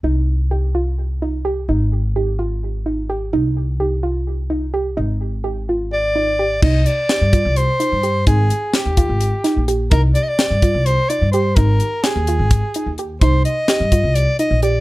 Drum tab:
CC |-------|-------|-------|-------|
HH |-------|-------|-------|-------|
SD |-------|-------|-------|-------|
BD |-------|-------|-------|-------|

CC |x------|-------|-------|-------|
HH |-xxxxxx|xxxxxxx|xxxxxxx|xxxxxxx|
SD |--o----|--o--o-|--o----|--o----|
BD |o--o---|o--o---|o--o---|o---o--|

CC |-------|
HH |xxxxxxx|
SD |--o----|
BD |o--o---|